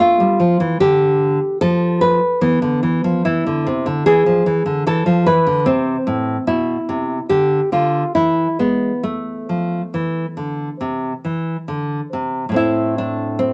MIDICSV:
0, 0, Header, 1, 2, 480
1, 0, Start_track
1, 0, Key_signature, 0, "minor"
1, 0, Tempo, 807537
1, 1429, Tempo, 849858
1, 1430, Time_signature, 4, 2, 24, 8
1, 1909, Tempo, 806452
1, 4309, Tempo, 848656
1, 4789, Tempo, 881057
1, 7189, Tempo, 842697
1, 7755, End_track
2, 0, Start_track
2, 0, Title_t, "Nylon-string guitar"
2, 0, Program_c, 0, 24
2, 0, Note_on_c, 0, 57, 50
2, 0, Note_on_c, 0, 65, 69
2, 106, Note_off_c, 0, 57, 0
2, 119, Note_on_c, 0, 55, 52
2, 228, Note_off_c, 0, 55, 0
2, 236, Note_on_c, 0, 53, 49
2, 346, Note_off_c, 0, 53, 0
2, 357, Note_on_c, 0, 52, 56
2, 453, Note_off_c, 0, 65, 0
2, 467, Note_off_c, 0, 52, 0
2, 477, Note_on_c, 0, 50, 63
2, 478, Note_on_c, 0, 67, 76
2, 821, Note_off_c, 0, 50, 0
2, 935, Note_off_c, 0, 67, 0
2, 957, Note_on_c, 0, 69, 80
2, 958, Note_on_c, 0, 53, 66
2, 1183, Note_off_c, 0, 69, 0
2, 1196, Note_on_c, 0, 71, 70
2, 1301, Note_off_c, 0, 53, 0
2, 1424, Note_off_c, 0, 71, 0
2, 1434, Note_on_c, 0, 52, 53
2, 1435, Note_on_c, 0, 59, 67
2, 1544, Note_off_c, 0, 52, 0
2, 1551, Note_on_c, 0, 50, 54
2, 1665, Note_off_c, 0, 50, 0
2, 1668, Note_on_c, 0, 52, 46
2, 1784, Note_off_c, 0, 52, 0
2, 1789, Note_on_c, 0, 53, 50
2, 1893, Note_off_c, 0, 59, 0
2, 1903, Note_off_c, 0, 53, 0
2, 1906, Note_on_c, 0, 64, 69
2, 1907, Note_on_c, 0, 52, 46
2, 2025, Note_off_c, 0, 52, 0
2, 2035, Note_on_c, 0, 50, 52
2, 2148, Note_off_c, 0, 50, 0
2, 2154, Note_on_c, 0, 48, 51
2, 2266, Note_off_c, 0, 48, 0
2, 2269, Note_on_c, 0, 50, 48
2, 2368, Note_off_c, 0, 64, 0
2, 2383, Note_off_c, 0, 50, 0
2, 2389, Note_on_c, 0, 68, 73
2, 2391, Note_on_c, 0, 52, 58
2, 2503, Note_off_c, 0, 52, 0
2, 2510, Note_on_c, 0, 53, 51
2, 2622, Note_off_c, 0, 53, 0
2, 2628, Note_on_c, 0, 52, 49
2, 2741, Note_off_c, 0, 52, 0
2, 2744, Note_on_c, 0, 50, 52
2, 2846, Note_off_c, 0, 68, 0
2, 2859, Note_off_c, 0, 50, 0
2, 2868, Note_on_c, 0, 52, 58
2, 2872, Note_on_c, 0, 69, 75
2, 2981, Note_off_c, 0, 52, 0
2, 2984, Note_on_c, 0, 53, 50
2, 3096, Note_off_c, 0, 69, 0
2, 3097, Note_off_c, 0, 53, 0
2, 3106, Note_on_c, 0, 52, 54
2, 3106, Note_on_c, 0, 71, 72
2, 3218, Note_off_c, 0, 52, 0
2, 3226, Note_on_c, 0, 50, 48
2, 3332, Note_off_c, 0, 71, 0
2, 3337, Note_off_c, 0, 50, 0
2, 3340, Note_on_c, 0, 48, 49
2, 3340, Note_on_c, 0, 60, 69
2, 3514, Note_off_c, 0, 48, 0
2, 3584, Note_on_c, 0, 45, 48
2, 3757, Note_off_c, 0, 45, 0
2, 3803, Note_off_c, 0, 60, 0
2, 3824, Note_on_c, 0, 47, 50
2, 3825, Note_on_c, 0, 64, 58
2, 3999, Note_off_c, 0, 47, 0
2, 4072, Note_on_c, 0, 48, 43
2, 4245, Note_off_c, 0, 48, 0
2, 4290, Note_off_c, 0, 64, 0
2, 4313, Note_on_c, 0, 67, 61
2, 4314, Note_on_c, 0, 50, 47
2, 4483, Note_off_c, 0, 50, 0
2, 4538, Note_off_c, 0, 67, 0
2, 4555, Note_on_c, 0, 50, 44
2, 4557, Note_on_c, 0, 65, 51
2, 4728, Note_off_c, 0, 50, 0
2, 4785, Note_off_c, 0, 65, 0
2, 4796, Note_on_c, 0, 64, 61
2, 4797, Note_on_c, 0, 52, 48
2, 4968, Note_off_c, 0, 52, 0
2, 5024, Note_off_c, 0, 64, 0
2, 5038, Note_on_c, 0, 56, 39
2, 5039, Note_on_c, 0, 59, 49
2, 5211, Note_off_c, 0, 56, 0
2, 5269, Note_off_c, 0, 59, 0
2, 5279, Note_on_c, 0, 57, 54
2, 5528, Note_on_c, 0, 53, 39
2, 5700, Note_off_c, 0, 53, 0
2, 5772, Note_on_c, 0, 52, 37
2, 5941, Note_off_c, 0, 52, 0
2, 6006, Note_on_c, 0, 50, 39
2, 6175, Note_off_c, 0, 50, 0
2, 6244, Note_on_c, 0, 48, 43
2, 6413, Note_off_c, 0, 48, 0
2, 6484, Note_on_c, 0, 52, 40
2, 6653, Note_off_c, 0, 52, 0
2, 6695, Note_off_c, 0, 57, 0
2, 6721, Note_on_c, 0, 50, 44
2, 6892, Note_off_c, 0, 50, 0
2, 6966, Note_on_c, 0, 48, 42
2, 7132, Note_off_c, 0, 48, 0
2, 7161, Note_on_c, 0, 45, 45
2, 7176, Note_on_c, 0, 57, 39
2, 7188, Note_on_c, 0, 60, 35
2, 7202, Note_on_c, 0, 64, 71
2, 7428, Note_off_c, 0, 64, 0
2, 7441, Note_on_c, 0, 62, 57
2, 7666, Note_off_c, 0, 60, 0
2, 7667, Note_off_c, 0, 62, 0
2, 7672, Note_on_c, 0, 60, 61
2, 7755, Note_off_c, 0, 45, 0
2, 7755, Note_off_c, 0, 57, 0
2, 7755, Note_off_c, 0, 60, 0
2, 7755, End_track
0, 0, End_of_file